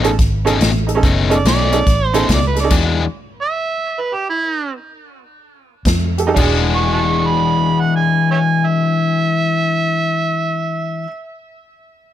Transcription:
Already playing: fingered electric bass A1
0.03 honky-tonk piano C#4 D#4 A4, closed hi-hat
0.19 fingered electric bass G#1, kick, snare, closed hi-hat
0.45 overdriven electric guitar B2 A3 C#4 D#4, honky-tonk piano C#4 D#4 A4, closed hi-hat
0.61 fingered electric bass A1, snare, closed hi-hat
0.87 honky-tonk piano D#4 A4, closed hi-hat
0.95 honky-tonk piano C#4 D#4 A4
1.03 fingered electric bass F#1, overdriven electric guitar B2 A3 C#4 D#4, kick, closed hi-hat
1.29 honky-tonk piano C#4 D#4 A4, closed hi-hat
1.36 harmonica D5
1.45 fingered electric bass B1, overdriven electric guitar B2 A3 C#4 D#4, harmonica D5, snare, closed hi-hat
1.72 honky-tonk piano C#4 D#4 A4, closed hi-hat
1.87 fingered electric bass A1, kick, snare, closed hi-hat
2.06 harmonica C5
2.13 overdriven electric guitar B2 A3 C#4 D#4, honky-tonk piano C#4 D#4 A4, closed hi-hat
2.28 fingered electric bass C#2, kick, snare, closed hi-hat
2.34 harmonica D5
2.47 harmonica B4
2.55 honky-tonk piano D#4 A4, snare, closed hi-hat
2.60 honky-tonk piano C#4 D#4, harmonica D5
2.65 honky-tonk piano A4
2.71 fingered electric bass E2, overdriven electric guitar E3 G#3 D4 F#4, kick, closed hi-hat, crash
3.42 harmonica E5
4.01 harmonica B4
4.14 harmonica G4
4.30 harmonica E4
5.85 fingered electric bass F2, kick, snare, closed hi-hat
6.18 honky-tonk piano G4 A4, closed hi-hat
6.27 honky-tonk piano D#4 G4 A4
6.34 fingered electric bass E1, overdriven electric guitar E3 G#3, honky-tonk piano D4 F#4, kick, crash
6.39 overdriven electric guitar D4 F#4, honky-tonk piano G#4
6.75 harmonica C#6
6.93 harmonica F#5 A5 C#6
7.26 harmonica B5
7.80 harmonica F#5
7.96 harmonica G#5
8.31 harmonica C#5 E5 G#5
8.67 harmonica E5

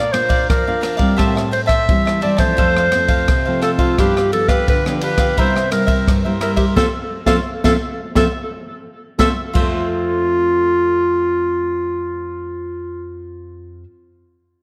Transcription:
Already playing: nylon-string guitar A#2, clarinet D5, cavaquinho F5
0.00 cavaquinho A#4 D5
0.13 nylon-string guitar A#3 D4 F4, clarinet C5, muted cavaquinho stroke, cross-stick, ride
0.29 cavaquinho A#4 D5 F5, kick, ride
0.50 nylon-string guitar F3, clarinet A#4, kick, cross-stick, ride
0.67 nylon-string guitar A#3 D4 F4, cavaquinho A#4 D5 F5
0.81 cavaquinho D4 A#4 D5 F5, cross-stick, ride
0.97 nylon-string guitar G3 C4 E4, cavaquinho A#4 D5 F5, kick, ride
1.17 nylon-string guitar A2, cavaquinho G4 C5 E5 A5, kick, cross-stick, ride
1.35 cavaquinho C5 E5 A5, cross-stick
1.51 clarinet C5, muted cavaquinho stroke, ride
1.66 cavaquinho C5 E5 A5, clarinet E5, kick, cross-stick, ride
1.89 nylon-string guitar E3 G3 C4 E4, kick, ride
2.05 cavaquinho C5 E5 A5, cross-stick
2.21 nylon-string guitar G3 C4 E4, cavaquinho G4 C5 E5 A5, clarinet D5, ride
2.37 nylon-string guitar F3 A3 C4, cavaquinho C5 E5 A5, clarinet C5, kick, cross-stick, ride
2.57 nylon-string guitar F2, cavaquinho F4 A4 C5 F5, kick, ride
2.77 cavaquinho A4 C5 F5, cross-stick
2.92 nylon-string guitar F3 A3 C4, muted cavaquinho stroke, cross-stick, ride
3.08 cavaquinho A4 C5 F5, kick, ride
3.28 nylon-string guitar C3, kick, cross-stick, ride
3.45 nylon-string guitar F3 A3 C4, cavaquinho A4 C5 F5
3.62 cavaquinho F4 A4 C5 F5, clarinet A4, cross-stick, ride
3.79 clarinet F4, cavaquinho A4 C5 F5, kick, ride
3.98 nylon-string guitar G2 F3 B3 D4, cavaquinho D4 G4 B4 F5, clarinet G4, kick, cross-stick, ride
4.16 cavaquinho G4 B4 F5, cross-stick
4.32 nylon-string guitar F3 B3 D4, clarinet A4, muted cavaquinho stroke, ride
4.48 cavaquinho G4 B4 F5, clarinet B4, kick, cross-stick, ride
4.68 nylon-string guitar D3, clarinet B4, kick, ride
4.86 nylon-string guitar F3 B3 D4, cavaquinho G4 B4 F5, cross-stick
5.01 cavaquinho D4 G4 B4 F5, clarinet B4, ride
5.18 cavaquinho G4 B4 F5, kick, cross-stick, ride
5.37 nylon-string guitar C3 G3 A#3 E4, cavaquinho E4 A#4 C5 E5, clarinet C5, kick, ride
5.55 cavaquinho A#4 C5 E5, cross-stick
5.71 nylon-string guitar G3 A#3 E4, clarinet A#4, muted cavaquinho stroke, cross-stick, ride
5.87 cavaquinho A#4 C5 E5, kick, ride
6.07 nylon-string guitar G2, kick, cross-stick, ride
6.25 nylon-string guitar G3 A#3 E4, cavaquinho A#4 C5 E5
6.41 cavaquinho E4 A#4 C5 E5, clarinet A#4, cross-stick, ride
6.56 clarinet G4, cavaquinho A#4 C5 E5, kick, ride
6.76 nylon-string guitar F3 A3 C4, clarinet A4, cavaquinho C5 E5 F5, kick, snare
7.26 nylon-string guitar F3 A3 C4, clarinet A4, cavaquinho C5 E5 F5, kick, snare
7.64 nylon-string guitar F3 A3 C4, clarinet A4, cavaquinho C5 E5 F5, kick, snare
8.15 nylon-string guitar F3 A3 C4, clarinet A4, cavaquinho C5 E5 F5, kick, snare
9.18 nylon-string guitar F3 A3 C4, clarinet A4, cavaquinho C5 E5 F5, kick, snare
9.53 nylon-string guitar F2, cavaquinho F4 A4 C5 E5, clarinet F4, kick, crash
9.58 nylon-string guitar A3 C4

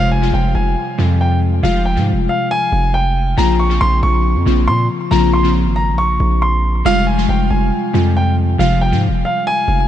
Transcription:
Already playing: 808-style bass F1, synth keys C3 F3 G3 G#3 F4
0.12 grand piano G#5
0.21 synth keys C3 F3 G3 G#3 F4
0.33 808-style bass F1, grand piano G5
0.55 808-style bass F1, grand piano G#5
0.98 808-style bass F2, synth keys C3 F3 G3 G#3 F4
1.21 grand piano G5
1.63 808-style bass F1, synth keys C3 F3 G3 G#3 F4, grand piano F5
1.85 grand piano G5
1.95 808-style bass G#2, synth keys C3 F3 G3 G#3 F4
2.13 808-style bass F1
2.29 grand piano F5
2.51 grand piano G#5
2.72 808-style bass F1
2.94 grand piano G5
3.37 808-style bass A#1, synth keys C#3 F3 A#3 C4 F4, grand piano A#5
3.59 grand piano C#6
3.69 synth keys C#3 F3 A#3 C4 F4
3.81 808-style bass A#1, grand piano C6
4.03 808-style bass A#1, grand piano C#6
4.35 808-style bass F2
4.46 808-style bass A#1, synth keys C#3 F3 A#3 C4 F4
4.68 808-style bass A#2, grand piano C6
5.11 808-style bass A#1, synth keys C#3 F3 A#3 C4 F4, grand piano A#5
5.34 grand piano C6
5.43 synth keys C#3 F3 A#3 C4 F4
5.66 808-style bass G#1
5.76 grand piano A#5
5.93 808-style bass A#1
5.98 grand piano C#6
6.20 808-style bass A#1
6.42 grand piano C6
6.85 808-style bass F1, synth keys C3 F3 G3 G#3 F4, grand piano F5
7.07 grand piano G#5
7.17 synth keys C3 F3 G3 G#3 F4
7.29 808-style bass F1, grand piano G5
7.50 808-style bass F1, grand piano G#5
7.93 808-style bass F2, synth keys C3 F3 G3 G#3 F4
8.17 grand piano G5
8.58 808-style bass F1, synth keys C3 F3 G3 G#3 F4, grand piano F5
8.81 grand piano G5
8.91 808-style bass G#2, synth keys C3 F3 G3 G#3 F4
9.08 808-style bass F1
9.25 grand piano F5
9.47 grand piano G#5
9.68 808-style bass F1

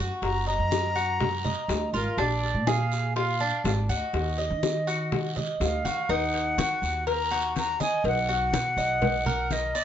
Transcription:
Already playing: cuban tres F#4
0.22 upright bass F#1, flute A#5, high bongo, high conga, long guiro
0.47 cuban tres D#5, flute A#5, high bongo, high conga
0.58 upright bass F#2
0.71 high bongo, high conga, short guiro
0.96 cuban tres F#4, high conga, short guiro
1.20 high bongo, high conga, low conga, long guiro
1.45 cuban tres D#5, high bongo, high conga, low conga
1.68 upright bass D2, high bongo, low bongo, high conga, short guiro
1.93 upright bass G#1, cuban tres F4, flute A#4, high bongo, short guiro
2.17 upright bass A#1, cuban tres D4, flute D5, high bongo, high conga, long guiro
2.43 high bongo, high conga
2.54 upright bass A#2
2.67 cuban tres G#4, flute F5, high bongo, high conga, short guiro
2.92 high bongo, short guiro
3.16 cuban tres F4, flute F5, high bongo, high conga, long guiro
3.40 cuban tres D4, high conga
3.64 upright bass G#1, flute F5, high bongo, low bongo, high conga, short guiro
3.89 upright bass D2, cuban tres F#4, flute D#5, high bongo, high conga, short guiro
4.13 upright bass D#2, high bongo, high conga, long guiro
4.38 cuban tres D#5, high bongo, high conga
4.50 upright bass D#3
4.63 high bongo, high conga, short guiro
4.87 cuban tres F#4, high conga, short guiro
5.12 high bongo, high conga, low conga, long guiro
5.36 cuban tres D#5, high bongo, high conga, low conga
5.60 upright bass D2, flute F5, high bongo, low bongo, high conga, short guiro
5.85 upright bass D#3, cuban tres F#4, high bongo, high conga, short guiro
6.09 upright bass D#2, cuban tres D#4, flute F#5, cowbell, high conga, long guiro
6.34 cowbell, high conga
6.58 upright bass D#3, cuban tres F#4, cowbell, high conga, short guiro
6.82 upright bass D#2, high conga, short guiro
7.07 cuban tres A#4, flute A#5, cowbell, high conga, long guiro
7.31 cuban tres F#4, cowbell, high conga
7.56 flute A#5, cowbell, high conga, short guiro
7.80 cuban tres D#5, flute G#5, high conga, short guiro
8.04 upright bass B1, flute F#5, cowbell, high conga, long guiro
8.29 cuban tres F#4, flute F#5, high conga
8.52 upright bass B2, cowbell, high conga, short guiro
8.77 upright bass B1, cuban tres D#5, high conga, short guiro
9.02 cowbell, high conga, low conga, long guiro
9.26 cuban tres A#4, high conga, low conga
9.51 flute D#5, cowbell, high conga, short guiro
9.75 cuban tres D5, short guiro

